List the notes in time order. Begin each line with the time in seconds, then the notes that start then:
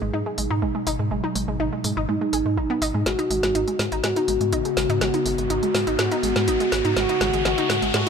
Already playing: B2 F#3 D#4 G#4
0.02 G#1 G#3
0.14 G#2 D#4
0.26 G#3
0.38 G#1 G#3, open hi-hat
0.51 G#2 D#4
0.62 G#1 G#3
0.75 G#3
0.87 G#1 D#4, open hi-hat
0.99 G#2 G#3
1.11 G#1 G#3
1.24 D#4
1.35 G#1 G#3, open hi-hat
1.48 G#1 G#3
1.60 G#1 D#4
1.73 G#3
1.84 G#2 G#3, open hi-hat
1.97 G#1 D#4
2.08 G#2 G#3 D#4
2.21 G#3
2.33 G#1 G#4, open hi-hat
2.46 G#2 G#3
2.57 G#1 D#4
2.70 B3
2.82 G#1 D#4, open hi-hat
2.94 G#2 G#3
3.06 G#1 C#3 G#3 B3 F#4, snare, closed hi-hat, riser
3.19 D#4, closed hi-hat
3.30 G#1 G#3, open hi-hat
3.43 G#1 G#3, snare, closed hi-hat
3.55 G#1 D#4, closed hi-hat
3.68 G#3, closed hi-hat
3.79 G#2 G#3, snare, open hi-hat
3.92 G#1 D#4, closed hi-hat
4.04 G#2 G#3 F#4, snare, closed hi-hat
4.16 D#4, closed hi-hat
4.28 G#1 G#3, open hi-hat
4.41 G#2 G#3, closed hi-hat
4.52 G#1 D#4, closed hi-hat
4.65 G#3, closed hi-hat
4.77 G#1 G#3, snare, open hi-hat
4.89 G#2 D#4, closed hi-hat
5.01 G#1 G#3 F#4, snare, closed hi-hat
5.14 D#4, closed hi-hat
5.26 G#1 G#3, open hi-hat
5.38 G#1 G#3, closed hi-hat
5.50 G#1 D#4, closed hi-hat
5.63 G#3, closed hi-hat
5.74 G#2 G#3, snare, open hi-hat
5.87 G#1 D#4, closed hi-hat
5.99 G#2 G#3 F#4, snare, closed hi-hat
6.12 D#4, closed hi-hat
6.23 G#1 G#3, open hi-hat
6.36 G#2 G#3, snare, closed hi-hat
6.48 G#1 D#4, closed hi-hat
6.60 G#3, closed hi-hat
6.72 G#1 G#3, snare, open hi-hat
6.85 G#2 D#4, closed hi-hat
6.96 G#1 G#3 A3 F#4, snare, closed hi-hat
7.09 D#4, closed hi-hat
7.21 G#1 G#3, snare, open hi-hat
7.33 G#1 G#3, closed hi-hat
7.45 G#1 G#3 F#4, snare, closed hi-hat
7.58 D#4, closed hi-hat
7.70 G#2 G#3, snare, open hi-hat
7.82 G#1 G#3, closed hi-hat
7.94 G#2 G#3 F#4, snare, closed hi-hat